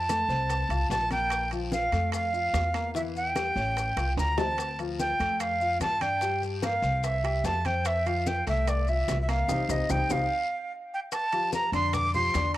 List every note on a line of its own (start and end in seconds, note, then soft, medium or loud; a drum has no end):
0.00 0.23 F2 medium
0.00 0.90 A5 medium
0.09 0.26 A3 medium
0.09 0.26 A4 medium
0.09 high bongo medium
0.09 high conga medium
0.09 high timbale medium
0.09 short guiro medium
0.09 maracas medium
0.29 0.67 C2 medium
0.29 0.63 C4 medium
0.29 0.63 C5 medium
0.29 high bongo soft
0.29 high conga soft
0.29 short guiro medium
0.29 maracas soft
0.50 high bongo medium
0.50 high conga soft
0.50 high timbale medium
0.50 long guiro medium
0.50 maracas medium
0.69 0.88 C2 medium
0.69 1.04 F4 medium
0.69 1.04 F5 medium
0.69 high bongo soft
0.69 high conga soft
0.69 high timbale medium
0.69 maracas soft
0.90 1.86 A#1 medium
0.90 1.10 A5 medium
0.90 high bongo medium
0.90 low bongo medium
0.90 high conga soft
0.90 low timbale medium
0.90 short guiro medium
0.90 maracas medium
1.11 1.44 A#3 medium
1.11 1.44 A#4 medium
1.11 1.49 G5 medium
1.11 high conga medium
1.11 high timbale medium
1.11 short guiro medium
1.11 maracas soft
1.30 high bongo medium
1.30 high conga soft
1.30 high timbale medium
1.30 long guiro medium
1.30 maracas medium
1.51 1.86 F3 medium
1.51 1.86 F4 medium
1.51 high bongo soft
1.51 high conga soft
1.51 high timbale medium
1.51 maracas soft
1.72 2.10 F5 medium
1.72 high bongo medium
1.72 high conga medium
1.72 short guiro medium
1.72 maracas medium
1.92 2.50 F2 medium
1.92 2.26 A3 medium
1.92 2.27 A4 medium
1.92 high bongo soft
1.92 high conga soft
1.92 high timbale medium
1.92 short guiro medium
1.92 maracas soft
2.12 2.91 F5 medium
2.12 high bongo medium
2.12 high conga soft
2.12 high timbale medium
2.12 long guiro medium
2.12 maracas medium
2.33 2.67 F4 medium
2.33 2.67 F5 medium
2.33 high conga soft
2.33 maracas soft
2.53 3.50 E2 medium
2.53 high bongo medium
2.53 low bongo medium
2.53 high conga medium
2.53 high timbale medium
2.53 low timbale medium
2.53 short guiro medium
2.53 maracas medium
2.74 2.91 A#3 medium
2.74 2.91 A#4 medium
2.74 high bongo soft
2.74 high timbale medium
2.74 short guiro medium
2.74 maracas soft
2.94 3.28 E3 medium
2.94 3.29 E4 medium
2.94 3.02 E5 medium
2.94 high bongo medium
2.94 high conga soft
2.94 long guiro medium
2.94 maracas medium
3.15 4.14 G5 loud
3.15 high bongo soft
3.15 high conga soft
3.15 maracas soft
3.36 3.52 G3 medium
3.36 3.53 G4 medium
3.36 high bongo medium
3.36 high conga medium
3.36 high timbale medium
3.36 short guiro medium
3.36 maracas medium
3.56 3.94 A1 medium
3.56 3.90 C#4 medium
3.56 3.90 C#5 medium
3.56 high bongo soft
3.56 high conga soft
3.56 short guiro medium
3.56 maracas soft
3.77 high bongo medium
3.77 high conga soft
3.77 high timbale medium
3.77 long guiro medium
3.77 maracas medium
3.97 4.16 C2 medium
3.97 4.31 F4 medium
3.97 4.31 F5 medium
3.97 high bongo medium
3.97 high conga soft
3.97 high timbale medium
3.97 maracas soft
4.17 5.13 D2 medium
4.17 4.40 A#5 medium
4.17 high conga soft
4.17 high timbale medium
4.17 short guiro medium
4.17 maracas medium
4.38 4.72 C4 medium
4.38 4.72 C5 medium
4.38 4.79 A5 medium
4.38 low bongo medium
4.38 high conga medium
4.38 low timbale medium
4.38 short guiro medium
4.38 maracas soft
4.58 high bongo medium
4.58 high conga soft
4.58 high timbale medium
4.58 long guiro medium
4.58 maracas medium
4.79 5.13 F3 medium
4.79 5.13 F4 medium
4.79 high bongo soft
4.79 high conga soft
4.79 high timbale medium
4.79 maracas soft
4.99 5.42 G5 medium
4.99 high bongo medium
4.99 high conga medium
4.99 short guiro medium
4.99 maracas medium
5.20 5.77 F2 medium
5.20 5.53 A3 medium
5.20 5.53 A4 medium
5.20 high bongo soft
5.20 high conga soft
5.20 high timbale medium
5.20 short guiro medium
5.20 maracas soft
5.40 5.81 F5 medium
5.40 high bongo medium
5.40 high conga soft
5.40 high timbale medium
5.40 long guiro medium
5.40 maracas medium
5.60 5.94 F4 medium
5.60 5.94 F5 medium
5.60 high conga soft
5.60 maracas soft
5.80 6.77 G2 medium
5.80 6.03 A5 loud
5.80 high bongo medium
5.80 low bongo medium
5.80 high conga medium
5.80 high timbale medium
5.80 short guiro medium
5.80 maracas medium
6.01 6.18 D4 medium
6.01 6.19 D5 medium
6.01 6.42 G5 medium
6.01 high bongo soft
6.01 high conga medium
6.01 high timbale medium
6.01 short guiro medium
6.01 maracas soft
6.21 6.56 G3 medium
6.21 6.56 G4 medium
6.21 high bongo medium
6.21 high conga soft
6.21 long guiro medium
6.21 maracas medium
6.42 high bongo soft
6.42 high conga soft
6.42 maracas soft
6.62 6.79 A#3 medium
6.62 6.80 A#4 medium
6.62 7.06 F5 medium
6.62 high bongo medium
6.62 high conga medium
6.62 high timbale medium
6.62 short guiro medium
6.62 maracas medium
6.82 7.40 C2 medium
6.82 7.17 C4 medium
6.82 7.17 C5 medium
6.82 high bongo soft
6.82 high conga soft
6.82 short guiro medium
6.82 maracas soft
7.03 7.47 E5 medium
7.03 high bongo medium
7.03 high conga soft
7.03 high timbale medium
7.03 long guiro medium
7.03 maracas medium
7.24 7.57 G4 medium
7.24 7.58 G5 medium
7.24 high bongo soft
7.24 high conga soft
7.24 high timbale medium
7.24 maracas soft
7.44 8.40 F2 medium
7.44 7.67 A5 medium
7.44 high bongo medium
7.44 low bongo medium
7.44 high conga soft
7.44 low timbale medium
7.44 short guiro medium
7.44 maracas medium
7.65 7.99 C4 medium
7.65 7.99 C5 medium
7.65 7.88 G5 medium
7.65 high conga medium
7.65 high timbale medium
7.65 short guiro medium
7.65 maracas soft
7.85 8.08 E5 medium
7.85 high bongo medium
7.85 high conga soft
7.85 high timbale medium
7.85 long guiro medium
7.85 maracas medium
8.06 8.40 F3 medium
8.06 8.40 F4 medium
8.06 8.29 F5 medium
8.06 high bongo soft
8.06 high conga soft
8.06 high timbale medium
8.06 maracas soft
8.26 8.47 G5 medium
8.26 high bongo medium
8.26 high conga medium
8.26 short guiro medium
8.26 maracas medium
8.46 9.04 C2 medium
8.46 8.80 A3 medium
8.46 8.80 A4 medium
8.46 8.70 E5 medium
8.46 high bongo soft
8.46 high conga soft
8.46 high timbale medium
8.46 short guiro medium
8.46 maracas soft
8.67 8.90 D5 medium
8.67 high bongo medium
8.67 high conga soft
8.67 high timbale medium
8.67 long guiro medium
8.67 maracas medium
8.88 9.22 F4 medium
8.88 9.22 E5 medium
8.88 9.21 E5 medium
8.88 high conga soft
8.88 maracas soft
9.08 9.46 C2 medium
9.08 high bongo medium
9.08 low bongo medium
9.08 high conga medium
9.08 high timbale medium
9.08 low timbale medium
9.08 short guiro medium
9.08 maracas medium
9.22 9.31 E5 medium
9.28 9.45 A#3 medium
9.28 9.46 A#4 medium
9.28 9.72 F5 medium
9.28 high bongo soft
9.28 high timbale medium
9.28 short guiro medium
9.28 maracas soft
9.48 9.64 C2 medium
9.48 9.62 C4 medium
9.48 9.62 D#4 loud
9.48 9.62 G4 medium
9.48 low bongo medium
9.48 high conga medium
9.48 high timbale medium
9.48 long guiro medium
9.48 maracas medium
9.69 9.84 C2 medium
9.69 9.83 C4 medium
9.69 9.83 D#4 medium
9.69 9.83 G4 medium
9.69 9.92 D#5 medium
9.69 low bongo medium
9.69 high conga medium
9.69 high timbale medium
9.69 long guiro medium
9.69 maracas medium
9.89 10.05 C2 medium
9.89 10.03 C4 medium
9.89 10.03 D#4 medium
9.89 10.03 G4 medium
9.89 10.13 G5 medium
9.89 low bongo medium
9.89 high conga medium
9.89 high timbale medium
9.89 long guiro medium
9.89 maracas medium
10.09 10.25 C2 medium
10.09 10.24 C4 medium
10.09 10.24 D#4 medium
10.09 10.24 G4 medium
10.09 10.72 F5 medium
10.09 low bongo medium
10.09 high conga medium
10.09 high timbale medium
10.09 long guiro medium
10.09 maracas medium
10.94 11.00 G5 medium
11.12 11.51 A5 medium
11.12 high bongo medium
11.12 high conga soft
11.12 high timbale medium
11.12 long guiro medium
11.12 maracas medium
11.32 11.66 F3 medium
11.32 11.67 F4 medium
11.32 11.67 G4 medium
11.32 high bongo soft
11.32 high conga soft
11.32 high timbale medium
11.32 maracas soft
11.52 11.73 A#5 medium
11.52 high bongo medium
11.52 high conga medium
11.52 short guiro medium
11.52 maracas medium
11.72 12.30 F2 medium
11.72 12.07 D3 medium
11.72 12.07 D4 medium
11.72 12.08 D5 medium
11.72 11.89 C6 medium
11.72 high bongo soft
11.72 high conga soft
11.72 high timbale medium
11.72 short guiro medium
11.72 maracas soft
11.89 11.95 C6 medium
11.89 high timbale medium
11.94 12.14 D6 loud
11.94 high bongo medium
11.94 high conga soft
11.94 low conga medium
11.94 long guiro medium
11.94 maracas medium
12.14 12.31 F3 medium
12.14 12.31 F4 medium
12.14 12.31 G4 medium
12.14 12.52 C6 loud
12.14 high conga soft
12.14 low conga medium
12.14 maracas soft
12.34 12.57 E2 medium
12.34 12.57 D3 medium
12.34 12.57 D4 medium
12.34 12.57 D5 medium
12.34 high bongo medium
12.34 low bongo medium
12.34 high conga medium
12.34 high timbale medium
12.34 short guiro medium
12.34 maracas medium